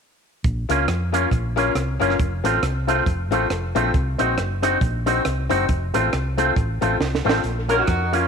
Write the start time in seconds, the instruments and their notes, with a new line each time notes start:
0.44 fingered electric bass A#1, kick, closed hi-hat
0.69 fingered electric bass C#2, clean electric guitar A#3 C#4 F4, upright piano C#4 F4 A#4 C#5, closed hi-hat
0.88 fingered electric bass F2, cross-stick, closed hi-hat
1.12 clean electric guitar A#3 C#4 F4, upright piano C#4 F4 A#4 C#5, closed hi-hat
1.31 fingered electric bass A#1, kick, closed hi-hat
1.56 clean electric guitar A#3 C#4 F4, upright piano C#4 F4 A#4 C#5, closed hi-hat
1.75 fingered electric bass C2, upright piano A#4 C#5, cross-stick, closed hi-hat
2.00 fingered electric bass F#1, clean electric guitar A#3 C#4 F4, upright piano C#4 F4 A#4 C#5, closed hi-hat
2.10 cross-stick
2.19 fingered electric bass F1, kick, closed hi-hat
2.44 fingered electric bass A1, clean electric guitar A3 C4 F4, upright piano C4 F4 A4 C5, closed hi-hat
2.63 fingered electric bass C2, cross-stick, closed hi-hat
2.87 clean electric guitar A3 C4 F4, upright piano C4 F4 A4 C5, closed hi-hat
3.06 fingered electric bass F1, kick, closed hi-hat
3.31 fingered electric bass A1, clean electric guitar A3 C4 F4, upright piano C4 F4 A4 C5, closed hi-hat
3.50 fingered electric bass F1, upright piano A4 C5, cross-stick, closed hi-hat
3.75 fingered electric bass A#1, clean electric guitar A3 C4 F4, upright piano C4 F4 A4 C5, closed hi-hat
3.94 fingered electric bass C2, kick, closed hi-hat
4.18 fingered electric bass A#1, clean electric guitar C4 D#4 F#4, upright piano C4 D#4 F#4 C5, closed hi-hat
4.38 fingered electric bass F#1, cross-stick, closed hi-hat
4.62 upright piano C4 D#4 F#4 C5, clean electric guitar C4 D#4 F#4, closed hi-hat
4.81 fingered electric bass A#1, kick, closed hi-hat
5.06 upright piano C4 D#4 F#4 C5, clean electric guitar C4 D#4 F#4, closed hi-hat
5.25 fingered electric bass C2, upright piano F#4 C5, cross-stick, closed hi-hat
5.49 fingered electric bass F#1, upright piano C4 D#4 F#4 C5, clean electric guitar C4 D#4 F#4, closed hi-hat
5.69 fingered electric bass F1, kick, closed hi-hat
5.94 fingered electric bass A1, clean electric guitar A3 C4 F4, upright piano C4 F4 A4 C5, closed hi-hat
6.13 fingered electric bass C2, cross-stick, closed hi-hat
6.38 clean electric guitar A3 C4 F4, upright piano C4 F4 A4 C5, closed hi-hat
6.56 fingered electric bass A1, kick, closed hi-hat
6.81 fingered electric bass A1, clean electric guitar A3 C4 F4, upright piano C4 F4 A4 C5, closed hi-hat
7.00 fingered electric bass C2, upright piano A4 C5, snare
7.15 snare
7.25 fingered electric bass A1, clean electric guitar A3 C4 F4, upright piano C4 F4 A4 C5
7.29 snare
7.44 fingered electric bass A#1, closed hi-hat
7.68 clean electric guitar A#3 C#4 F4, upright piano C#4 F4 A#4 C#5, horn section F#4 A#4, closed hi-hat
7.79 horn section D#4 F#4
7.87 fingered electric bass F2, kick, cross-stick, closed hi-hat
8.12 clean electric guitar A#3 C#4 F4, upright piano C#4 F4 A#4 C#5, horn section C#4 F4, closed hi-hat